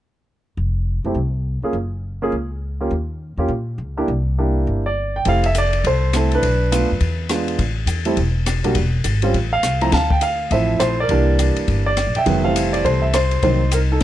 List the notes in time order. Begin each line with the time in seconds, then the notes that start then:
0.57 F1
1.04 F#1 A3 C4 E4 G4
1.14 C2
1.62 A#3 C#4 F4 G#4, muted upright bass stroke
1.73 F#1
2.22 A#3 C#4 F4 G#4
2.32 C#2
2.81 A#3 C#4 F4 G4
2.91 D#2
3.37 E2 A#3 C#4 F4 G4
3.48 A#2
3.78 C#2
3.97 A#3 D4 E4 G4
4.08 C2
4.38 A#3 D4 E4 G4
4.67 G1
4.86 D5
5.16 G5
5.25 F1 A3 C4 E4 G4 A4 F5, kick, ride
5.44 E5, ride
5.55 D5, hi-hat pedal, ride
5.73 ride
5.84 C2 A4 C5, kick, ride
6.13 A3 C4 E4 A4, cross-stick, hi-hat pedal, ride
6.31 D4 B4, ride
6.42 B1, kick, ride
6.72 A3 B3 D4 F4, hi-hat pedal, ride
6.81 D2
6.92 F2
7.01 E2, kick, ride
7.29 G#3 B3 D4 F4, cross-stick, hi-hat pedal, ride
7.48 ride
7.58 A1, kick, ride
7.86 E2, hi-hat pedal, ride
8.05 G3 A3 C4 E4, ride
8.17 E1, kick, ride
8.46 cross-stick, hi-hat pedal, ride
8.64 B1 G3 A#3 D4 F#4, ride
8.75 E1, kick, ride
9.04 G#1, hi-hat pedal, ride
9.22 G3 C4 C#4 F4, ride
9.34 A1, kick, ride
9.53 F5
9.63 C2, cross-stick, hi-hat pedal, ride
9.81 F3 A3 C4 E4 A#5, ride
9.92 D2 F5 A5, kick, snare, ride
10.10 G5, kick
10.21 F5, hi-hat pedal, ride
10.51 A1 F3 A3 C4 E4 C5 E5, kick, ride
10.79 A#1 C5, cross-stick, hi-hat pedal, ride
11.00 A#4 D5
11.09 C2 E3 G3 A#3 D4, kick, ride
11.39 hi-hat pedal, ride
11.56 ride
11.68 G1, kick, ride
11.86 D5
11.97 cross-stick, hi-hat pedal, ride
12.07 A#1
12.15 F#1 E5 G5, ride
12.26 F1 D#3 F#3 G#3 B3, kick, ride
12.44 E3 G3 A3 C4 F5
12.56 hi-hat pedal, ride
12.73 D5, ride
12.84 C2 A4 C5, kick, ride
13.02 E5
13.13 C5, cross-stick, hi-hat pedal, ride
13.31 ride
13.43 C2 D#3 F#3 A#3 C4 D#4 C5, kick, ride
13.71 A#4, hi-hat pedal, ride
13.92 D#4 A4